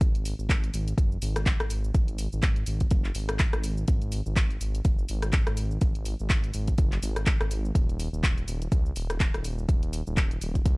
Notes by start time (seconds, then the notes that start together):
0.01 G#1, kick, closed hi-hat, cabasa
0.15 closed hi-hat, cabasa
0.25 open hi-hat, cabasa
0.39 G#1, cabasa
0.49 kick, clap, closed hi-hat, cabasa
0.64 closed hi-hat, cabasa
0.74 G#1, open hi-hat, cabasa
0.88 closed hi-hat, cabasa
0.97 F#1, kick, closed hi-hat, cabasa
1.12 cabasa
1.22 G#1, open hi-hat, cabasa
1.36 cross-stick, closed hi-hat, cabasa
1.46 kick, clap, closed hi-hat, cabasa
1.60 G#1, cross-stick, closed hi-hat, cabasa
1.70 open hi-hat, cabasa
1.84 cabasa
1.94 G#1, kick, closed hi-hat, cabasa
2.08 closed hi-hat, cabasa
2.18 open hi-hat, cabasa
2.32 G#1, cabasa
2.43 kick, clap, closed hi-hat, cabasa
2.56 closed hi-hat, cabasa
2.66 G#1, open hi-hat, cabasa
2.80 kick, closed hi-hat, cabasa
2.91 F#1, kick, closed hi-hat, cabasa
3.04 clap, cabasa
3.15 G#1, open hi-hat, cabasa
3.29 cross-stick, closed hi-hat, cabasa
3.39 kick, clap, closed hi-hat, cabasa
3.53 G#1, cross-stick, closed hi-hat, cabasa
3.63 open hi-hat, cabasa
3.77 cabasa
3.88 G#1, kick, closed hi-hat, cabasa
4.02 closed hi-hat, cabasa
4.12 open hi-hat, cabasa
4.26 G#1, cabasa
4.36 kick, clap, closed hi-hat, cabasa
4.50 closed hi-hat, cabasa
4.61 G#1, open hi-hat, cabasa
4.75 closed hi-hat, cabasa
4.85 F#1, kick, closed hi-hat, cabasa
4.98 cabasa
5.08 G#1, open hi-hat, cabasa
5.22 cross-stick, closed hi-hat, cabasa
5.33 kick, clap, closed hi-hat, cabasa
5.47 G#1, cross-stick, closed hi-hat, cabasa
5.57 open hi-hat, cabasa
5.71 cabasa
5.81 G#1, kick, closed hi-hat, cabasa
5.95 closed hi-hat, cabasa
6.05 open hi-hat, cabasa
6.19 G#1, cabasa
6.30 kick, clap, closed hi-hat, cabasa
6.44 closed hi-hat, cabasa
6.54 G#1, open hi-hat, cabasa
6.68 kick, closed hi-hat, cabasa
6.78 F#1, kick, closed hi-hat, cabasa
6.92 clap, closed hi-hat, cabasa
7.03 G#1, open hi-hat, cabasa
7.16 cross-stick, closed hi-hat, cabasa
7.26 kick, clap, closed hi-hat, cabasa
7.41 G#1, cross-stick, closed hi-hat, cabasa
7.51 open hi-hat, cabasa
7.65 cabasa
7.75 D#1, kick, closed hi-hat, cabasa
7.90 closed hi-hat, cabasa
8.00 open hi-hat, cabasa
8.13 D#1, cabasa
8.23 kick, clap, closed hi-hat, cabasa
8.38 closed hi-hat, cabasa
8.48 D#1, open hi-hat, cabasa
8.62 closed hi-hat, cabasa
8.72 C#2, kick, closed hi-hat, cabasa
8.86 cabasa
8.96 D#1, open hi-hat, cabasa
9.10 cross-stick, closed hi-hat, cabasa
9.20 kick, clap, closed hi-hat, cabasa
9.34 D#1, cross-stick, closed hi-hat, cabasa
9.45 open hi-hat, cabasa
9.58 cabasa
9.69 D#1, kick, closed hi-hat, cabasa
9.83 closed hi-hat, cabasa
9.93 open hi-hat, cabasa
10.07 D#1, cabasa
10.17 kick, clap, closed hi-hat, cabasa
10.31 closed hi-hat, cabasa
10.41 D#1, open hi-hat, cabasa
10.55 kick, closed hi-hat, cabasa
10.66 C#2, kick, closed hi-hat, cabasa